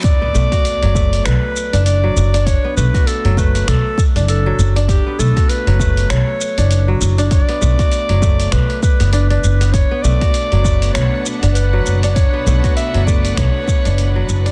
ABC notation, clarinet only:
X:1
M:4/4
L:1/16
Q:"Swing 16ths" 1/4=99
K:Bm
V:1 name="Clarinet"
d8 B4 d4 | c2 B2 A2 B2 A2 z2 A3 z | G2 A2 B4 c6 z2 | d8 B2 B2 B4 |
c2 d6 c2 z2 B3 z | c4 e2 d2 c6 z2 |]